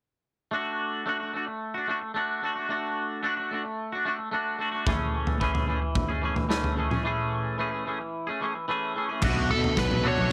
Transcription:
0.51 clean electric guitar A3 D4 F#4
1.06 clean electric guitar A3 D4 F#4
1.20 clean electric guitar D4 F#4
1.33 clean electric guitar A3 D4 F#4
1.48 muted clean electric guitar stroke
1.74 clean electric guitar D4 F#4
1.88 clean electric guitar A3 D4 F#4
2.02 muted clean electric guitar stroke
2.14 clean electric guitar A3 D4 F#4
2.42 clean electric guitar A3 D4 F#4
2.55 clean electric guitar D4 F#4
2.69 clean electric guitar A3 D4 F#4
3.23 clean electric guitar A3 D4 F#4
3.37 clean electric guitar D4 F#4
3.51 clean electric guitar A3 D4 F#4
3.65 muted clean electric guitar stroke
3.92 clean electric guitar D4 F#4
4.05 clean electric guitar A3 D4 F#4
4.19 muted clean electric guitar stroke
4.31 clean electric guitar A3 D4 F#4
4.59 clean electric guitar A3 D4 F#4
4.72 clean electric guitar D4 F#4
4.86 clean electric guitar E3 A3 C#4 G#4, kick, floor tom
5.27 floor tom
5.40 clean electric guitar E3 A3 C#4 G#4, kick
5.54 clean electric guitar A3 C#4 G#4, floor tom
5.67 clean electric guitar E3 A3 C#4 G#4
5.82 muted clean electric guitar stroke
5.95 kick, floor tom
6.09 clean electric guitar A3 C#4 G#4
6.22 clean electric guitar E3 A3 C#4 G#4
6.36 muted clean electric guitar stroke, floor tom
6.49 clean electric guitar E3 A3 C#4 G#4, snare
6.64 floor tom
6.76 clean electric guitar E3 A3 C#4 G#4
6.90 clean electric guitar A3 C#4 G#4, mid tom
7.04 clean electric guitar E3 A3 C#4 G#4
7.58 clean electric guitar E3 A3 C#4 G#4
7.71 clean electric guitar A3 C#4 G#4
7.86 clean electric guitar E3 A3 C#4 G#4
8.01 muted clean electric guitar stroke
8.27 clean electric guitar A3 C#4 G#4
8.40 clean electric guitar E3 A3 C#4 G#4
8.55 muted clean electric guitar stroke
8.68 clean electric guitar E3 A3 C#4 G#4
8.95 clean electric guitar E3 A3 C#4 G#4
9.09 clean electric guitar A3 C#4 G#4
9.22 fingered electric bass B1, distorted electric guitar B2, clean electric guitar A3 D4 F#4, kick, floor tom, crash
9.50 fingered electric bass B2, clean electric guitar A3 D4, lead electric guitar A4
9.64 floor tom
9.77 fingered electric bass B1, distorted electric guitar F#3, clean electric guitar A3 D4, lead electric guitar B4, kick, snare
9.91 floor tom, mid tom
10.04 fingered electric bass B2, clean electric guitar A3 D4 F#4
10.08 lead electric guitar C#5
10.18 fingered electric bass B1, mid tom

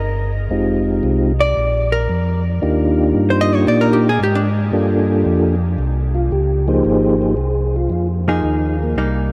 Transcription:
Already playing: tonewheel organ G1, hollow-body jazz guitar A#4
0.50 tonewheel organ F1 G#3 C4 D#4 F4 G4
1.03 tonewheel organ C2
1.41 hollow-body jazz guitar D5
1.57 tonewheel organ A#1
1.92 hollow-body jazz guitar A#4
2.09 tonewheel organ F2
2.62 tonewheel organ D#2 A#3 D4 D#4 F4 G4
3.15 tonewheel organ G2
3.30 hollow-body jazz guitar C5
3.41 hollow-body jazz guitar D#5
3.55 hollow-body jazz guitar C#5
3.67 tonewheel organ A#2, hollow-body jazz guitar D5
3.81 hollow-body jazz guitar A#4
3.93 hollow-body jazz guitar G4
4.09 hollow-body jazz guitar G#4
4.20 tonewheel organ G#2, hollow-body jazz guitar G4
4.35 hollow-body jazz guitar D4
4.73 tonewheel organ G2 A#3 D4 F4 G4 A4
5.25 tonewheel organ F2
5.78 tonewheel organ C2
6.15 tonewheel organ F4
6.31 tonewheel organ C#2 G4
6.67 tonewheel organ F3 A#3 D#4 G4 G#4 C5
6.85 tonewheel organ G#1 G#4
7.22 tonewheel organ G#4
7.37 tonewheel organ C2
7.76 tonewheel organ F4
7.90 tonewheel organ F2 F4
8.28 hollow-body jazz guitar F3 A#3 D#4 G#4, tonewheel organ D#4
8.43 tonewheel organ D#2
8.83 tonewheel organ A#3
8.96 tonewheel organ C2, hollow-body jazz guitar G3 A#3 D#4

